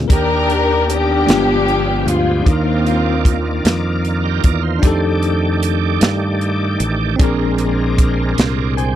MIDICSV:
0, 0, Header, 1, 6, 480
1, 0, Start_track
1, 0, Tempo, 789474
1, 60, Time_signature, 6, 3, 24, 8
1, 5445, End_track
2, 0, Start_track
2, 0, Title_t, "Tonewheel organ"
2, 0, Program_c, 0, 16
2, 61, Note_on_c, 0, 51, 49
2, 61, Note_on_c, 0, 66, 46
2, 62, Note_on_c, 0, 62, 48
2, 62, Note_on_c, 0, 70, 47
2, 99, Note_on_c, 0, 67, 56
2, 100, Note_off_c, 0, 66, 0
2, 780, Note_off_c, 0, 51, 0
2, 780, Note_off_c, 0, 62, 0
2, 781, Note_off_c, 0, 70, 0
2, 783, Note_on_c, 0, 56, 46
2, 783, Note_on_c, 0, 59, 45
2, 783, Note_on_c, 0, 65, 44
2, 785, Note_on_c, 0, 53, 53
2, 799, Note_off_c, 0, 67, 0
2, 821, Note_off_c, 0, 65, 0
2, 821, Note_on_c, 0, 67, 56
2, 1495, Note_on_c, 0, 74, 49
2, 1499, Note_on_c, 0, 51, 50
2, 1499, Note_on_c, 0, 63, 50
2, 1500, Note_on_c, 0, 58, 50
2, 1501, Note_off_c, 0, 56, 0
2, 1501, Note_off_c, 0, 59, 0
2, 1502, Note_off_c, 0, 53, 0
2, 1520, Note_off_c, 0, 67, 0
2, 1538, Note_on_c, 0, 65, 58
2, 1539, Note_off_c, 0, 63, 0
2, 2575, Note_on_c, 0, 70, 50
2, 2577, Note_on_c, 0, 67, 45
2, 2691, Note_off_c, 0, 70, 0
2, 2691, Note_off_c, 0, 74, 0
2, 2692, Note_off_c, 0, 67, 0
2, 2698, Note_on_c, 0, 74, 53
2, 2702, Note_on_c, 0, 70, 50
2, 2813, Note_off_c, 0, 74, 0
2, 2815, Note_off_c, 0, 70, 0
2, 2815, Note_on_c, 0, 72, 51
2, 2915, Note_off_c, 0, 51, 0
2, 2915, Note_off_c, 0, 58, 0
2, 2930, Note_on_c, 0, 57, 59
2, 2931, Note_on_c, 0, 51, 64
2, 2931, Note_on_c, 0, 67, 71
2, 2932, Note_on_c, 0, 74, 61
2, 2934, Note_off_c, 0, 65, 0
2, 3045, Note_off_c, 0, 72, 0
2, 4351, Note_off_c, 0, 57, 0
2, 4352, Note_off_c, 0, 51, 0
2, 4352, Note_off_c, 0, 67, 0
2, 4352, Note_off_c, 0, 74, 0
2, 4376, Note_on_c, 0, 70, 72
2, 4378, Note_on_c, 0, 56, 64
2, 4379, Note_on_c, 0, 60, 60
2, 4381, Note_on_c, 0, 62, 60
2, 5320, Note_off_c, 0, 70, 0
2, 5341, Note_on_c, 0, 79, 53
2, 5445, Note_off_c, 0, 56, 0
2, 5445, Note_off_c, 0, 60, 0
2, 5445, Note_off_c, 0, 62, 0
2, 5445, Note_off_c, 0, 79, 0
2, 5445, End_track
3, 0, Start_track
3, 0, Title_t, "String section"
3, 0, Program_c, 1, 48
3, 68, Note_on_c, 1, 67, 67
3, 69, Note_on_c, 1, 70, 85
3, 73, Note_on_c, 1, 62, 57
3, 520, Note_off_c, 1, 70, 0
3, 542, Note_off_c, 1, 67, 0
3, 544, Note_off_c, 1, 62, 0
3, 548, Note_on_c, 1, 59, 56
3, 549, Note_on_c, 1, 67, 88
3, 551, Note_on_c, 1, 62, 58
3, 1239, Note_off_c, 1, 59, 0
3, 1241, Note_off_c, 1, 62, 0
3, 1264, Note_off_c, 1, 67, 0
3, 1273, Note_on_c, 1, 65, 68
3, 1493, Note_off_c, 1, 65, 0
3, 1500, Note_on_c, 1, 65, 60
3, 1501, Note_on_c, 1, 58, 43
3, 1501, Note_on_c, 1, 60, 43
3, 2015, Note_off_c, 1, 65, 0
3, 2196, Note_off_c, 1, 58, 0
3, 2196, Note_off_c, 1, 60, 0
3, 5445, End_track
4, 0, Start_track
4, 0, Title_t, "Tine electric piano"
4, 0, Program_c, 2, 4
4, 0, Control_c, 2, 64, 127
4, 0, Note_on_c, 2, 46, 58
4, 0, Note_on_c, 2, 58, 59
4, 0, Note_on_c, 2, 60, 54
4, 0, Note_on_c, 2, 65, 56
4, 0, Note_on_c, 2, 68, 65
4, 47, Note_on_c, 2, 70, 48
4, 55, Note_on_c, 2, 62, 43
4, 58, Note_on_c, 2, 51, 52
4, 68, Control_c, 2, 64, 0
4, 69, Note_off_c, 2, 60, 0
4, 70, Note_on_c, 2, 67, 56
4, 71, Note_off_c, 2, 46, 0
4, 71, Note_off_c, 2, 58, 0
4, 73, Note_off_c, 2, 65, 0
4, 85, Note_off_c, 2, 68, 0
4, 181, Control_c, 2, 64, 127
4, 754, Note_off_c, 2, 51, 0
4, 766, Note_on_c, 2, 56, 49
4, 773, Note_off_c, 2, 70, 0
4, 775, Note_on_c, 2, 59, 48
4, 777, Note_off_c, 2, 62, 0
4, 779, Note_on_c, 2, 43, 53
4, 782, Note_on_c, 2, 65, 50
4, 785, Note_off_c, 2, 67, 0
4, 788, Control_c, 2, 64, 0
4, 792, Note_on_c, 2, 67, 60
4, 891, Control_c, 2, 64, 127
4, 1475, Note_off_c, 2, 43, 0
4, 1475, Note_on_c, 2, 62, 48
4, 1491, Note_on_c, 2, 63, 43
4, 1492, Note_off_c, 2, 56, 0
4, 1497, Note_off_c, 2, 59, 0
4, 1499, Note_off_c, 2, 65, 0
4, 1499, Note_on_c, 2, 51, 46
4, 1505, Note_off_c, 2, 67, 0
4, 1506, Note_on_c, 2, 65, 47
4, 1508, Control_c, 2, 64, 0
4, 1523, Note_on_c, 2, 70, 51
4, 1622, Control_c, 2, 64, 127
4, 2195, Note_off_c, 2, 51, 0
4, 2903, Note_off_c, 2, 62, 0
4, 2911, Note_off_c, 2, 63, 0
4, 2912, Note_on_c, 2, 62, 60
4, 2918, Note_off_c, 2, 65, 0
4, 2927, Note_off_c, 2, 70, 0
4, 2929, Note_on_c, 2, 63, 56
4, 2944, Note_on_c, 2, 67, 52
4, 2948, Control_c, 2, 64, 0
4, 2961, Note_on_c, 2, 69, 72
4, 3044, Control_c, 2, 64, 127
4, 4342, Note_off_c, 2, 62, 0
4, 4350, Note_off_c, 2, 63, 0
4, 4354, Note_on_c, 2, 60, 60
4, 4358, Note_off_c, 2, 67, 0
4, 4367, Note_off_c, 2, 69, 0
4, 4368, Note_on_c, 2, 62, 54
4, 4376, Note_on_c, 2, 46, 56
4, 4384, Note_on_c, 2, 68, 52
4, 4387, Control_c, 2, 64, 0
4, 4400, Note_on_c, 2, 70, 65
4, 4483, Control_c, 2, 64, 127
4, 5074, Note_off_c, 2, 46, 0
4, 5324, Note_off_c, 2, 68, 0
4, 5332, Note_off_c, 2, 70, 0
4, 5335, Note_on_c, 2, 80, 50
4, 5340, Note_on_c, 2, 72, 39
4, 5445, Note_off_c, 2, 60, 0
4, 5445, Note_off_c, 2, 62, 0
4, 5445, Note_off_c, 2, 72, 0
4, 5445, Note_off_c, 2, 80, 0
4, 5445, End_track
5, 0, Start_track
5, 0, Title_t, "Fingered electric bass"
5, 0, Program_c, 3, 33
5, 61, Note_on_c, 3, 39, 72
5, 756, Note_off_c, 3, 39, 0
5, 781, Note_on_c, 3, 31, 70
5, 1236, Note_off_c, 3, 31, 0
5, 1251, Note_on_c, 3, 38, 80
5, 1476, Note_off_c, 3, 38, 0
5, 1497, Note_on_c, 3, 39, 74
5, 2194, Note_off_c, 3, 39, 0
5, 2219, Note_on_c, 3, 41, 75
5, 2675, Note_off_c, 3, 41, 0
5, 2700, Note_on_c, 3, 40, 63
5, 2920, Note_off_c, 3, 40, 0
5, 2937, Note_on_c, 3, 41, 83
5, 3634, Note_off_c, 3, 41, 0
5, 3654, Note_on_c, 3, 43, 72
5, 4113, Note_off_c, 3, 43, 0
5, 4135, Note_on_c, 3, 33, 81
5, 4358, Note_off_c, 3, 33, 0
5, 4377, Note_on_c, 3, 34, 79
5, 5075, Note_off_c, 3, 34, 0
5, 5098, Note_on_c, 3, 36, 78
5, 5445, Note_off_c, 3, 36, 0
5, 5445, End_track
6, 0, Start_track
6, 0, Title_t, "Drums"
6, 60, Note_on_c, 9, 36, 88
6, 62, Note_on_c, 9, 42, 67
6, 121, Note_off_c, 9, 36, 0
6, 123, Note_off_c, 9, 42, 0
6, 302, Note_on_c, 9, 42, 42
6, 363, Note_off_c, 9, 42, 0
6, 545, Note_on_c, 9, 42, 58
6, 606, Note_off_c, 9, 42, 0
6, 781, Note_on_c, 9, 42, 72
6, 791, Note_on_c, 9, 38, 93
6, 842, Note_off_c, 9, 42, 0
6, 852, Note_off_c, 9, 38, 0
6, 1023, Note_on_c, 9, 42, 33
6, 1084, Note_off_c, 9, 42, 0
6, 1264, Note_on_c, 9, 42, 53
6, 1325, Note_off_c, 9, 42, 0
6, 1499, Note_on_c, 9, 36, 99
6, 1502, Note_on_c, 9, 42, 63
6, 1560, Note_off_c, 9, 36, 0
6, 1562, Note_off_c, 9, 42, 0
6, 1742, Note_on_c, 9, 42, 41
6, 1803, Note_off_c, 9, 42, 0
6, 1977, Note_on_c, 9, 36, 77
6, 1982, Note_on_c, 9, 42, 64
6, 2038, Note_off_c, 9, 36, 0
6, 2043, Note_off_c, 9, 42, 0
6, 2220, Note_on_c, 9, 42, 74
6, 2229, Note_on_c, 9, 38, 93
6, 2280, Note_off_c, 9, 42, 0
6, 2290, Note_off_c, 9, 38, 0
6, 2461, Note_on_c, 9, 42, 35
6, 2521, Note_off_c, 9, 42, 0
6, 2697, Note_on_c, 9, 42, 60
6, 2700, Note_on_c, 9, 36, 70
6, 2758, Note_off_c, 9, 42, 0
6, 2761, Note_off_c, 9, 36, 0
6, 2935, Note_on_c, 9, 36, 89
6, 2935, Note_on_c, 9, 42, 70
6, 2996, Note_off_c, 9, 36, 0
6, 2996, Note_off_c, 9, 42, 0
6, 3177, Note_on_c, 9, 42, 41
6, 3238, Note_off_c, 9, 42, 0
6, 3421, Note_on_c, 9, 42, 58
6, 3482, Note_off_c, 9, 42, 0
6, 3655, Note_on_c, 9, 42, 70
6, 3665, Note_on_c, 9, 38, 89
6, 3716, Note_off_c, 9, 42, 0
6, 3726, Note_off_c, 9, 38, 0
6, 3899, Note_on_c, 9, 42, 33
6, 3960, Note_off_c, 9, 42, 0
6, 4134, Note_on_c, 9, 42, 57
6, 4195, Note_off_c, 9, 42, 0
6, 4374, Note_on_c, 9, 42, 66
6, 4375, Note_on_c, 9, 36, 94
6, 4435, Note_off_c, 9, 42, 0
6, 4436, Note_off_c, 9, 36, 0
6, 4611, Note_on_c, 9, 42, 45
6, 4672, Note_off_c, 9, 42, 0
6, 4854, Note_on_c, 9, 36, 74
6, 4855, Note_on_c, 9, 42, 56
6, 4915, Note_off_c, 9, 36, 0
6, 4916, Note_off_c, 9, 42, 0
6, 5095, Note_on_c, 9, 42, 72
6, 5105, Note_on_c, 9, 38, 92
6, 5156, Note_off_c, 9, 42, 0
6, 5166, Note_off_c, 9, 38, 0
6, 5339, Note_on_c, 9, 42, 36
6, 5400, Note_off_c, 9, 42, 0
6, 5445, End_track
0, 0, End_of_file